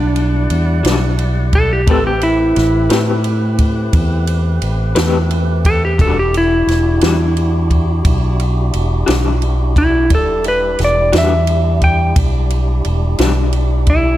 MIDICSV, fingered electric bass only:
0, 0, Header, 1, 2, 480
1, 0, Start_track
1, 0, Key_signature, 1, "minor"
1, 0, Tempo, 685714
1, 1310, Time_signature, 12, 3, 24, 8
1, 9921, End_track
2, 0, Start_track
2, 0, Title_t, "Fingered electric bass"
2, 0, Program_c, 0, 33
2, 0, Note_on_c, 0, 35, 96
2, 324, Note_off_c, 0, 35, 0
2, 352, Note_on_c, 0, 40, 77
2, 572, Note_off_c, 0, 40, 0
2, 588, Note_on_c, 0, 35, 76
2, 1314, Note_off_c, 0, 35, 0
2, 1314, Note_on_c, 0, 33, 93
2, 1764, Note_off_c, 0, 33, 0
2, 1798, Note_on_c, 0, 33, 80
2, 2015, Note_off_c, 0, 33, 0
2, 2034, Note_on_c, 0, 45, 83
2, 2724, Note_off_c, 0, 45, 0
2, 2756, Note_on_c, 0, 40, 100
2, 3206, Note_off_c, 0, 40, 0
2, 3235, Note_on_c, 0, 33, 73
2, 3454, Note_off_c, 0, 33, 0
2, 3472, Note_on_c, 0, 40, 75
2, 4196, Note_on_c, 0, 28, 90
2, 4206, Note_off_c, 0, 40, 0
2, 4646, Note_off_c, 0, 28, 0
2, 4670, Note_on_c, 0, 28, 83
2, 4891, Note_off_c, 0, 28, 0
2, 4917, Note_on_c, 0, 40, 83
2, 5607, Note_off_c, 0, 40, 0
2, 5639, Note_on_c, 0, 35, 102
2, 6088, Note_off_c, 0, 35, 0
2, 6120, Note_on_c, 0, 28, 84
2, 6338, Note_off_c, 0, 28, 0
2, 6359, Note_on_c, 0, 35, 81
2, 7077, Note_off_c, 0, 35, 0
2, 7077, Note_on_c, 0, 28, 86
2, 7527, Note_off_c, 0, 28, 0
2, 7558, Note_on_c, 0, 28, 79
2, 7777, Note_off_c, 0, 28, 0
2, 7795, Note_on_c, 0, 40, 79
2, 8486, Note_off_c, 0, 40, 0
2, 8514, Note_on_c, 0, 35, 88
2, 8966, Note_off_c, 0, 35, 0
2, 8999, Note_on_c, 0, 28, 68
2, 9217, Note_off_c, 0, 28, 0
2, 9235, Note_on_c, 0, 35, 79
2, 9921, Note_off_c, 0, 35, 0
2, 9921, End_track
0, 0, End_of_file